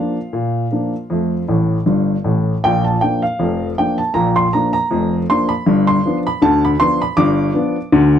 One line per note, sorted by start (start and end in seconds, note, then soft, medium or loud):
0.00 0.15 F3 soft
0.00 0.15 A#3 soft
0.00 0.16 D4 soft
0.00 1.81 F4 medium
0.00 1.39 F5 medium
0.33 0.65 A#2 medium
0.71 0.92 F3 soft
0.71 0.92 A#3 soft
0.71 0.93 D4 soft
1.10 1.42 F2 medium
1.10 1.32 A3 soft
1.48 1.76 A1 medium
1.48 1.76 A2 medium
1.86 2.14 G1 medium
1.86 2.14 G2 medium
2.24 2.53 A1 medium
2.24 2.52 A2 medium
2.64 2.95 A#1 medium
2.64 2.95 A#2 medium
2.64 2.83 G5 medium
2.85 3.00 A5 medium
3.01 3.22 F3 soft
3.01 3.22 A#3 soft
3.01 3.23 D4 soft
3.01 3.21 G5 medium
3.22 3.66 F5 medium
3.39 3.71 F1 medium
3.39 3.71 F2 medium
3.78 3.99 F3 soft
3.78 3.99 A#3 soft
3.78 3.99 D4 soft
3.78 3.98 G5 medium
3.98 4.14 A5 medium
4.14 4.46 A#1 medium
4.14 4.46 A#2 medium
4.14 4.34 A#5 medium
4.36 4.52 C6 medium
4.53 4.74 F3 soft
4.53 4.74 A#3 soft
4.53 4.74 D4 medium
4.53 4.72 A#5 medium
4.73 5.17 A#5 medium
4.91 5.23 F1 medium
4.91 5.22 F2 medium
5.30 5.50 F3 soft
5.30 5.50 A#3 medium
5.30 5.51 D4 medium
5.30 5.49 C6 medium
5.49 5.84 B5 medium
5.66 5.98 G1 medium
5.66 5.98 G2 medium
5.87 6.17 C6 medium
6.05 6.26 F3 medium
6.05 6.26 B3 soft
6.05 6.27 D4 medium
6.27 6.42 B5 medium
6.42 6.74 D2 medium
6.42 6.74 D3 medium
6.42 6.62 A5 loud
6.65 6.80 B5 medium
6.80 7.01 F3 soft
6.80 7.00 B3 medium
6.80 7.01 D4 medium
6.80 7.00 C6 loud
7.02 7.18 B5 medium
7.17 7.49 G1 medium
7.17 7.49 G2 medium
7.17 8.08 D6 loud
7.54 7.75 F3 medium
7.54 7.75 B3 medium
7.54 7.76 D4 medium
7.92 8.19 D2 medium
7.92 8.19 D3 medium